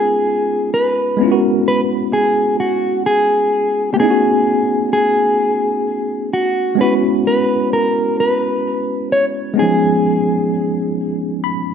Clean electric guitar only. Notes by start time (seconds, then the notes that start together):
Already playing: G#4
0.74 B4
1.34 A#4
1.68 B4
2.13 G#4
2.60 F#4
3.06 G#4
3.94 G4
4.00 G#4
4.93 G#4
6.33 F#4
6.81 B4
7.27 B4
7.73 A#4
8.20 B4
9.12 C#5
9.59 G#4